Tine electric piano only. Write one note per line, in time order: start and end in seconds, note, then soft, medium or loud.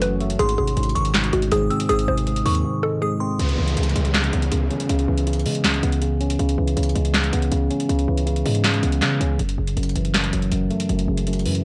0.00 0.02 F#2 loud
0.00 0.39 F#2 medium
0.00 0.41 C#3 medium
0.00 0.39 E3 medium
0.00 0.41 F#3 medium
0.00 0.21 A3 medium
0.21 0.39 A3 medium
0.40 0.76 G#2 loud
0.58 1.52 C3 medium
0.77 1.13 G#2 medium
0.96 1.89 D#3 medium
1.14 1.51 G#2 medium
1.33 2.27 G#3 medium
1.52 1.88 G#2 medium
1.71 2.64 C4 medium
1.89 2.26 G#2 loud
2.08 3.02 C3 medium
2.27 2.63 G#2 medium
2.45 3.39 D#3 medium
2.64 3.01 G#2 loud
2.83 3.39 G#3 medium
3.02 3.39 G#2 medium
3.21 3.39 C4 medium
3.39 3.75 C#3 loud
3.58 4.52 E3 medium
3.76 4.13 C#3 medium
3.95 4.89 G#3 medium
4.15 4.51 C#3 medium
4.33 5.27 B3 medium
4.52 4.88 C#3 medium
4.70 5.64 C#4 medium
4.89 5.26 C#3 loud
5.08 6.02 E3 medium
5.27 5.63 C#3 medium
5.46 6.39 G#3 medium
5.64 6.01 C#3 medium
5.83 6.77 B3 medium
6.02 6.38 C#3 medium
6.21 7.14 C#4 medium
6.39 6.76 C#3 loud
6.58 7.52 E3 medium
6.77 7.13 C#3 medium
6.95 7.89 G#3 medium
7.14 7.50 C#3 medium
7.33 8.27 B3 medium
7.51 7.87 C#3 medium
7.70 8.64 C#4 medium
7.89 8.25 C#3 loud
8.08 9.02 E3 medium
8.26 8.63 C#3 medium
8.45 9.39 G#3 medium
8.64 9.01 C#3 medium
8.84 9.40 B3 medium
9.02 9.39 C#3 medium
9.20 9.39 C#4 medium
9.39 9.76 F#2 medium
9.58 10.52 C#3 medium
9.77 10.13 F#2 medium
9.96 10.89 E3 medium
10.14 10.51 F#2 medium
10.33 11.27 F#3 medium
10.52 10.88 F#2 medium
10.70 11.64 A3 medium
10.89 11.26 F#2 medium
11.08 11.64 C#3 medium
11.27 11.63 F#2 medium
11.45 11.64 E3 medium